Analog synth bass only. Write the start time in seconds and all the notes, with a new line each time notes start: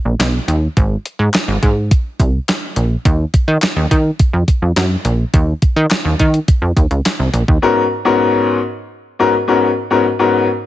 0.05 A#1
0.20 B1
0.48 D#2
0.77 G#1
1.19 G#2
1.48 G#1
1.63 G#2
2.20 C2
2.76 A#1
3.05 D#2
3.48 D#3
3.76 D#2
3.91 D#3
4.33 F2
4.62 F2
4.76 F#2
5.05 A#1
5.34 D#2
5.76 D#3
6.05 D#2
6.20 D#3
6.62 F2
6.77 D#2
6.91 C#2
7.19 C2
7.34 A#1
7.48 D#2